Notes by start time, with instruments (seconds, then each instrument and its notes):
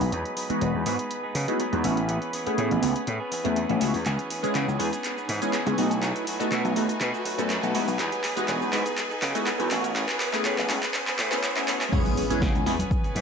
Already playing: violin section B4 B5, riser
0.00 slap bass B1, clean electric guitar B3 D#4 G#4, open hi-hat
0.12 slap bass E2, clean electric guitar F#3 B3 D#4 G#4, closed hi-hat
0.25 closed hi-hat
0.36 clean electric guitar F#3 B3 D#4 G#4, open hi-hat
0.49 analog polysynth E3 G#3 B3 D#4 F#4, clean electric guitar B3 D#4 G#4, muted slap bass stroke, closed hi-hat
0.61 slap bass E1, clean electric guitar F#3 B3 D#4 G#4, closed hi-hat
0.74 slap bass E2
0.85 slap bass G#2, clean electric guitar F#3 B3 D#4 G#4, analog polysynth G#3 B3 D#4 E4 F#4, open hi-hat
0.99 clean electric guitar B3 D#4 G#4, closed hi-hat
1.11 closed hi-hat
1.23 clean electric guitar B3 D#4 G#4
1.35 slap bass C#3, clean electric guitar F#3 B3 D#4 G#4, open hi-hat
1.48 analog polysynth G#3 B3 D#4 E4 F#4, closed hi-hat
1.59 clean electric guitar F#3 B3 D#4 G#4, closed hi-hat
1.72 slap bass E2, analog polysynth G#3 B3 D#4 E4 F#4, closed hi-hat
1.83 slap bass A1, clean electric guitar E3 B3 C#4 G#4, analog polysynth A3 B3 C#4 E4 F#4, open hi-hat
1.97 clean electric guitar B3 C#4 G#4, closed hi-hat
2.09 clean electric guitar E3 B3 C#4 G#4, closed hi-hat
2.22 closed hi-hat
2.33 clean electric guitar E3 B3 C#4 G#4, open hi-hat
2.46 analog polysynth A3 B3 C#4 E4 G#4, clean electric guitar B3 C#4 G#4, muted slap bass stroke, closed hi-hat
2.57 slap bass A2, clean electric guitar E3 B3 C#4 G#4, closed hi-hat
2.71 slap bass A1, closed hi-hat
2.82 slap bass C#2, clean electric guitar E3 B3 C#4 G#4, analog polysynth A3 B3 C#4 E4 G#4, open hi-hat
2.95 clean electric guitar B3 C#4 G#4, closed hi-hat
3.07 slap bass A2, closed hi-hat
3.20 clean electric guitar B3 C#4 G#4
3.31 clean electric guitar E3 B3 C#4 G#4, open hi-hat
3.44 slap bass E2, analog polysynth A3 B3 C#4 E4 G#4, closed hi-hat
3.56 clean electric guitar E3 B3 C#4 G#4, closed hi-hat
3.69 slap bass A1, analog polysynth A3 B3 C#4 E4 G#4, closed hi-hat
3.80 slap bass C#2, clean electric guitar E3 B3 C#4 G#4, analog polysynth A3 B3 C#4 E4 F#4, open hi-hat
3.94 slap bass E2, clean electric guitar B3 C#4 G#4, open hi-hat
4.05 slap bass C#2, clean electric guitar E3 B3 C#4 G#4, violin section B4 G#5, clap, closed hi-hat, shaker
4.19 closed hi-hat, shaker
4.30 clean electric guitar E3 B3 C#4 G#4, open hi-hat
4.43 analog polysynth G#3 B3 C#4 E4 G#4, clean electric guitar B3 C#4 G#4, muted slap bass stroke, closed hi-hat, shaker
4.54 slap bass C#3, clean electric guitar E3 B3 C#4 G#4, clap, closed hi-hat, shaker
4.68 slap bass C#2, shaker
4.79 slap bass E2, clean electric guitar E3 B3 C#4 G#4, analog polysynth G#3 B3 C#4 E4 G#4, open hi-hat
4.92 clean electric guitar B3 C#4 G#4, closed hi-hat, shaker
5.04 clap, closed hi-hat, shaker
5.16 clean electric guitar B3 C#4 G#4, shaker
5.28 slap bass G#2, clean electric guitar E3 B3 C#4 G#4, open hi-hat
5.41 analog polysynth G#3 B3 C#4 E4 G#4, closed hi-hat, shaker
5.53 clean electric guitar E3 B3 C#4 G#4, clap, closed hi-hat, shaker
5.66 slap bass C#2, analog polysynth G#3 B3 C#4 E4 G#4, closed hi-hat, shaker
5.77 slap bass B1, clean electric guitar F#3 A3 D#4 F#4, analog polysynth A3 B3 D#4 F#4 G#4, open hi-hat
5.90 clean electric guitar A3 D#4 F#4, closed hi-hat, shaker
6.02 clean electric guitar F#3 A3 D#4 F#4, clap, closed hi-hat, shaker
6.16 closed hi-hat, shaker
6.27 clean electric guitar F#3 A3 D#4 F#4, open hi-hat
6.39 analog polysynth A3 B3 D#4 F#4 A4, clean electric guitar A3 D#4 F#4, muted slap bass stroke, closed hi-hat, shaker
6.51 slap bass B2, clean electric guitar F#3 A3 D#4 F#4, clap, closed hi-hat, shaker
6.64 slap bass B1, closed hi-hat, shaker
6.75 slap bass D#2, clean electric guitar F#3 A3 D#4 F#4, analog polysynth A3 B3 D#4 F#4 A4, open hi-hat
6.89 clean electric guitar A3 D#4 F#4, closed hi-hat, shaker
7.00 slap bass B2, clap, closed hi-hat, shaker
7.13 clean electric guitar A3 D#4 F#4, shaker
7.25 clean electric guitar F#3 A3 D#4 F#4, open hi-hat
7.38 slap bass F#2, analog polysynth A3 B3 D#4 F#4 A4, closed hi-hat, shaker
7.49 clean electric guitar F#3 A3 D#4 F#4, clap, closed hi-hat, shaker
7.62 slap bass B1, analog polysynth A3 B3 D#4 F#4 A4, closed hi-hat, shaker
7.74 slap bass E2, clean electric guitar F#3 B3 D#4 G#4, analog polysynth G#3 B3 D#4 E4 F#4, open hi-hat
7.87 slap bass B1, clean electric guitar B3 D#4 G#4, open hi-hat, shaker
7.99 slap bass E2, clean electric guitar F#3 B3 D#4 G#4, clap, closed hi-hat, shaker
8.12 closed hi-hat, shaker
8.23 clean electric guitar F#3 B3 D#4 G#4, clap, open hi-hat
8.36 analog polysynth E3 G#3 B3 D#4 F#4, clean electric guitar B3 D#4 G#4, muted slap bass stroke, closed hi-hat, shaker
8.48 slap bass E1, clean electric guitar F#3 B3 D#4 G#4, clap, closed hi-hat, shaker
8.61 slap bass E2, shaker
8.72 slap bass G#2, clean electric guitar F#3 B3 D#4 G#4, analog polysynth G#3 B3 D#4 E4 F#4, clap, open hi-hat
8.85 clean electric guitar B3 D#4 G#4, closed hi-hat, shaker
8.98 clap, closed hi-hat, shaker
9.10 clean electric guitar B3 D#4 G#4, shaker
9.22 slap bass C#3, clean electric guitar F#3 B3 D#4 G#4, clap, open hi-hat
9.35 analog polysynth G#3 B3 D#4 E4 F#4, closed hi-hat, shaker
9.46 clean electric guitar F#3 B3 D#4 G#4, clap, closed hi-hat, shaker
9.59 slap bass E2, analog polysynth G#3 B3 D#4 E4 F#4, closed hi-hat, shaker
9.71 slap bass A1, clean electric guitar E3 B3 C#4 G#4, analog polysynth A3 B3 C#4 E4 F#4, clap, open hi-hat
9.84 clean electric guitar B3 C#4 G#4, closed hi-hat, shaker
9.95 clean electric guitar E3 B3 C#4 G#4, clap, closed hi-hat, shaker
10.09 clap, closed hi-hat, shaker
10.20 clean electric guitar E3 B3 C#4 G#4, clap, open hi-hat
10.33 analog polysynth A3 B3 C#4 E4 G#4, clean electric guitar B3 C#4 G#4, muted slap bass stroke, clap, closed hi-hat, shaker
10.44 slap bass A2, clean electric guitar E3 B3 C#4 G#4, clap, closed hi-hat, shaker
10.58 slap bass A1, clap, closed hi-hat, shaker
10.69 slap bass C#2, clean electric guitar E3 B3 C#4 G#4, analog polysynth A3 B3 C#4 E4 G#4, clap, open hi-hat
10.82 clean electric guitar B3 C#4 G#4, clap, closed hi-hat, shaker
10.94 clap, closed hi-hat, shaker
11.07 clean electric guitar B3 C#4 G#4, clap, closed hi-hat, shaker
11.18 slap bass A2, clean electric guitar E3 B3 C#4 G#4, clap, open hi-hat
11.31 analog polysynth A3 B3 C#4 E4 G#4, clap, closed hi-hat, shaker
11.43 clean electric guitar E3 B3 C#4 G#4, clap, closed hi-hat, shaker
11.56 analog polysynth A3 B3 C#4 E4 G#4, clap, closed hi-hat, shaker
11.67 clean electric guitar E3 B3 C#4 G#4, analog polysynth A3 B3 C#4 E4 F#4, clap, open hi-hat
11.80 clean electric guitar B3 C#4 G#4, clap, open hi-hat, shaker
11.92 slap bass C#2, clean electric guitar E3 B3 C#4 G#4, analog polysynth G#3 B3 C#4 E4 G#4, violin section B4 G#5, kick, crash, impact, shaker
12.05 closed hi-hat, high conga, shaker
12.17 clean electric guitar E3 B3 C#4 G#4, open hi-hat, shaker
12.30 analog polysynth G#3 B3 C#4 E4 G#4, muted slap bass stroke, closed hi-hat, shaker
12.41 slap bass C#3, clean electric guitar E3 B3 C#4 G#4, kick, snare, high conga, shaker
12.55 slap bass C#2, closed hi-hat, shaker
12.66 slap bass E2, analog polysynth G#3 B3 C#4 E4 G#4, snare, open hi-hat, shaker
12.79 clean electric guitar B3 C#4 G#4, closed hi-hat, high conga, shaker
12.91 kick, shaker
13.04 clean electric guitar B3 C#4 G#4, closed hi-hat, shaker
13.15 slap bass G#2, clean electric guitar E3 B3 C#4 G#4, open hi-hat, high conga, shaker